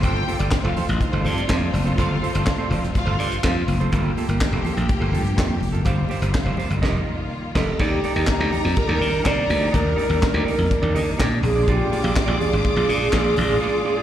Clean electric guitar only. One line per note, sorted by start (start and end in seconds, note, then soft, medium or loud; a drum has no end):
0.04 0.23 F4 medium
0.04 0.23 A4 medium
0.04 0.24 C5 medium
0.27 0.39 F4 medium
0.27 0.39 A4 medium
0.27 0.39 C5 medium
0.39 0.50 F4 soft
0.39 0.51 A4 medium
0.39 0.52 D5 medium
0.64 0.75 F4 medium
0.64 0.76 A4 medium
0.64 0.76 C5 medium
0.76 0.92 F4 medium
0.76 0.88 A4 medium
0.76 0.87 C5 medium
0.88 muted clean electric guitar stroke soft
1.01 muted clean electric guitar stroke soft
1.12 1.22 F4 medium
1.12 1.23 A4 medium
1.12 1.24 C5 medium
1.23 1.39 F4 medium
1.23 1.36 A4 medium
1.23 1.35 C5 medium
1.36 muted clean electric guitar stroke soft
1.48 1.68 F4 medium
1.48 1.60 A4 medium
1.48 1.59 C5 medium
1.60 muted clean electric guitar stroke soft
1.72 muted clean electric guitar stroke soft
1.85 1.96 F4 medium
1.85 1.97 A4 medium
1.85 1.98 C5 medium
1.98 2.17 F4 medium
1.98 2.17 A4 medium
1.98 2.18 C5 medium
2.22 2.34 F4 medium
2.22 2.33 A4 medium
2.22 2.33 C5 medium
2.34 2.45 F4 soft
2.34 2.45 A4 medium
2.34 2.45 C5 medium
2.58 2.69 F4 medium
2.58 2.70 A4 medium
2.58 2.71 C5 medium
2.70 2.85 F4 medium
2.70 2.81 A4 medium
2.70 2.81 C5 medium
2.82 muted clean electric guitar stroke soft
2.94 muted clean electric guitar stroke soft
3.06 3.17 F4 medium
3.06 3.18 A4 medium
3.06 3.19 C5 medium
3.18 3.34 F4 medium
3.18 3.30 A4 medium
3.18 3.30 D5 medium
3.30 muted clean electric guitar stroke soft
3.43 3.62 F4 medium
3.43 3.56 A4 medium
3.43 3.55 C5 medium
3.56 muted clean electric guitar stroke soft
3.69 muted clean electric guitar stroke soft
3.80 3.92 F4 medium
3.80 3.92 A4 medium
3.80 3.95 C5 medium
3.92 4.11 A#3 medium
3.92 4.12 F4 medium
3.92 4.12 A4 medium
4.17 4.29 A#3 medium
4.17 4.29 F4 medium
4.17 4.29 A4 medium
4.30 4.40 A#3 soft
4.30 4.41 F4 soft
4.30 4.42 A#4 medium
4.41 muted clean electric guitar stroke soft
4.52 4.63 A#3 medium
4.52 4.64 F4 medium
4.52 4.65 A4 medium
4.65 4.80 A#3 medium
4.65 4.76 F4 medium
4.65 4.76 A4 medium
4.77 muted clean electric guitar stroke soft
4.88 muted clean electric guitar stroke soft
5.00 5.11 A#3 medium
5.00 5.12 F4 medium
5.00 5.12 A4 medium
5.12 5.28 A#3 medium
5.12 5.25 F4 medium
5.12 5.24 A4 medium
5.26 muted clean electric guitar stroke soft
5.36 5.56 A#3 medium
5.36 5.50 F4 medium
5.36 5.48 A4 medium
5.50 muted clean electric guitar stroke soft
5.61 muted clean electric guitar stroke soft
5.73 5.89 A#3 soft
5.73 5.85 F4 medium
5.73 5.85 A4 medium
5.85 6.05 G4 medium
5.85 6.05 C5 medium
5.85 6.05 F5 medium
6.10 6.22 G4 medium
6.10 6.21 C5 medium
6.10 6.21 F5 medium
6.22 6.33 G4 medium
6.22 6.33 C5 medium
6.22 6.34 F5 medium
6.34 muted clean electric guitar stroke soft
6.45 6.57 G4 medium
6.45 6.57 C5 medium
6.45 6.58 F5 medium
6.58 6.74 G4 medium
6.58 6.70 C5 medium
6.58 6.69 F5 medium
6.71 muted clean electric guitar stroke soft
6.82 7.00 G4 medium
6.82 6.99 A#4 medium
6.82 6.99 D#5 medium
7.55 7.73 G4 medium
7.55 7.72 A#4 loud
7.55 7.72 D#5 medium
7.80 7.99 D#4 medium
7.80 8.00 G4 medium
7.80 8.00 D5 medium
8.04 8.16 D#4 medium
8.04 8.15 G4 medium
8.04 8.16 D5 medium
8.16 8.27 D#4 soft
8.16 8.28 G4 medium
8.16 8.29 D#5 medium
8.39 8.50 D#4 medium
8.39 8.51 G4 medium
8.39 8.52 D5 medium
8.52 8.68 D#4 medium
8.52 8.63 G4 medium
8.52 8.62 D5 medium
8.64 muted clean electric guitar stroke soft
8.76 muted clean electric guitar stroke soft
8.87 8.98 D#4 medium
8.87 8.98 G4 medium
8.87 8.99 D5 medium
8.99 9.15 D#4 medium
8.99 9.11 G4 medium
8.99 9.10 D5 medium
9.11 muted clean electric guitar stroke soft
9.23 9.43 D#4 medium
9.23 9.35 G4 medium
9.23 9.34 D5 medium
9.35 muted clean electric guitar stroke soft
9.47 muted clean electric guitar stroke soft
9.59 9.70 D#4 soft
9.59 9.70 G4 medium
9.59 9.72 D5 medium
9.71 9.92 D#4 medium
9.71 9.92 G4 medium
9.71 9.93 D5 medium
9.96 10.10 D#4 medium
9.96 10.08 G4 medium
9.96 10.08 D5 medium
10.09 10.20 D#4 soft
10.09 10.21 G4 medium
10.09 10.21 D5 medium
10.34 10.44 D#4 medium
10.34 10.45 G4 medium
10.34 10.45 D5 medium
10.45 10.61 D#4 medium
10.45 10.57 G4 medium
10.45 10.57 D5 medium
10.58 muted clean electric guitar stroke soft
10.70 muted clean electric guitar stroke soft
10.82 10.93 D#4 soft
10.82 10.94 G4 medium
10.82 10.96 D5 medium
10.95 11.10 D#4 medium
10.95 11.05 G4 medium
10.95 11.05 D#5 medium
11.06 muted clean electric guitar stroke soft
11.18 11.38 D#4 medium
11.18 11.31 G4 medium
11.18 11.30 D5 medium
11.32 muted clean electric guitar stroke soft
11.44 muted clean electric guitar stroke soft
11.56 11.67 F4 soft
11.56 11.67 G#4 medium
11.56 11.68 D5 medium
11.68 11.87 F4 medium
11.68 11.87 G#4 medium
11.68 11.88 D5 medium
11.91 12.03 F4 medium
11.91 12.02 G#4 medium
11.91 12.03 D5 medium
12.03 12.15 F4 medium
12.03 12.15 G#4 medium
12.03 12.16 F5 medium
12.26 12.37 F4 medium
12.26 12.38 G#4 medium
12.26 12.39 D5 medium
12.38 12.55 F4 medium
12.38 12.52 G#4 medium
12.38 12.51 D5 medium
12.64 muted clean electric guitar stroke soft
12.75 12.87 F4 medium
12.75 12.88 G#4 medium
12.75 12.89 D5 medium
12.88 13.04 F4 medium
12.88 13.00 G#4 medium
12.88 12.99 D5 medium
13.00 muted clean electric guitar stroke soft
13.13 13.32 F4 medium
13.13 13.25 G#4 medium
13.13 13.24 D5 medium
13.26 muted clean electric guitar stroke soft
13.37 muted clean electric guitar stroke soft
13.49 13.60 F4 medium
13.49 13.61 G#4 medium
13.49 13.61 D5 medium
13.61 13.80 F4 medium
13.61 13.81 G#4 medium
13.61 13.81 D5 loud
13.84 13.96 F4 medium
13.84 13.96 G#4 medium
13.84 13.95 D5 medium
13.96 14.03 F4 medium
13.96 14.03 G#4 medium
13.96 14.03 D5 medium